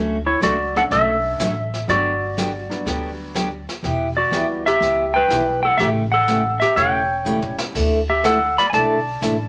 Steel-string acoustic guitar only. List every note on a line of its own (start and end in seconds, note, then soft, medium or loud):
0.00 0.16 D3 soft
0.00 0.16 F#3 medium
0.00 0.16 A3 medium
0.00 0.17 C#4 medium
0.00 0.17 F#4 medium
0.41 0.54 D3 medium
0.41 0.54 F#3 medium
0.41 0.54 A3 medium
0.41 0.54 C#4 medium
0.41 0.54 F#4 medium
0.91 1.14 D3 medium
0.91 1.15 F#3 medium
0.91 1.15 A3 medium
0.91 1.15 C#4 medium
0.91 1.15 F#4 medium
1.40 1.52 D3 medium
1.40 1.52 F#3 medium
1.40 1.52 A3 medium
1.40 1.52 C#4 medium
1.40 1.53 F#4 medium
1.88 2.11 D3 soft
1.88 2.12 F#3 medium
1.88 2.12 B3 medium
1.88 2.12 D4 medium
1.88 2.13 G4 medium
2.37 2.49 D3 medium
2.37 2.50 F#3 medium
2.37 2.50 B3 medium
2.37 2.50 D4 medium
2.37 2.50 G4 medium
2.85 3.09 D3 soft
2.85 3.09 F#3 medium
2.85 3.10 B3 medium
2.85 3.10 D4 medium
2.85 3.10 G4 medium
3.34 3.47 D3 medium
3.34 3.47 F#3 medium
3.34 3.47 B3 medium
3.34 3.47 D4 medium
3.34 3.48 G4 medium
3.83 4.07 E3 medium
3.83 4.07 B3 medium
3.83 4.07 E4 medium
3.83 4.08 G4 medium
4.31 4.44 E3 medium
4.31 4.44 B3 medium
4.31 4.45 E4 medium
4.31 4.45 G4 medium
4.80 5.04 E3 medium
4.80 5.04 B3 medium
4.80 5.05 E4 medium
4.80 5.04 G4 medium
5.28 5.42 E3 medium
5.28 5.42 B3 medium
5.28 5.42 E4 medium
5.28 5.43 G4 medium
5.78 6.02 C#3 soft
5.78 6.02 E3 medium
5.78 6.02 A3 medium
5.78 6.03 C#4 medium
5.78 6.03 G4 medium
6.27 6.40 C#3 medium
6.27 6.40 E3 medium
6.27 6.40 A3 medium
6.27 6.40 C#4 medium
6.27 6.41 G4 medium
6.76 7.00 C#3 medium
6.76 7.00 E3 medium
6.76 7.00 A3 medium
6.76 7.00 C#4 medium
6.76 7.01 G4 medium
7.25 7.38 C#3 medium
7.25 7.38 E3 medium
7.25 7.38 A3 medium
7.25 7.39 C#4 medium
7.25 7.39 G4 medium
7.74 7.98 D3 soft
7.74 7.98 A3 medium
7.74 7.99 D4 medium
7.74 7.99 E4 medium
7.74 7.99 A4 medium
8.23 8.36 D3 medium
8.23 8.36 A3 medium
8.23 8.37 D4 medium
8.23 8.37 E4 medium
8.23 8.37 A4 medium
8.72 8.96 D3 medium
8.72 8.96 A3 medium
8.72 8.97 D4 medium
8.72 8.97 E4 medium
8.72 8.97 A4 medium
9.21 9.34 D3 medium
9.21 9.34 A3 medium
9.21 9.35 D4 medium
9.21 9.34 E4 medium
9.21 9.35 A4 medium